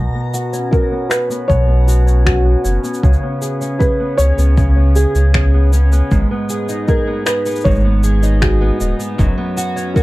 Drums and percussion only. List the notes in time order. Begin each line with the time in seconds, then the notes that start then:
0.34 cabasa
0.54 cabasa
0.73 kick, cabasa
1.11 finger snap, cabasa
1.31 cabasa
1.50 kick, cabasa
1.88 cabasa
2.08 cabasa
2.27 finger snap, kick, cabasa
2.65 cabasa
2.84 cabasa
2.94 cabasa
3.03 kick, cabasa
3.13 cabasa
3.42 cabasa
3.62 cabasa
3.81 kick, cabasa
4.19 cabasa
4.39 cabasa
4.58 kick, cabasa
4.96 cabasa
5.15 cabasa
5.34 finger snap, kick, cabasa
5.73 cabasa
5.92 cabasa
6.12 kick, cabasa
6.50 cabasa
6.69 cabasa
6.88 kick, cabasa
7.27 finger snap, cabasa
7.46 cabasa
7.51 cabasa
7.55 cabasa
7.61 cabasa
7.65 kick
7.71 cabasa
7.75 cabasa
7.80 cabasa
8.04 cabasa
8.23 cabasa
8.42 finger snap, kick, cabasa
8.81 cabasa
9.00 cabasa
9.19 kick, cabasa
9.58 cabasa
9.77 cabasa
9.96 kick, cabasa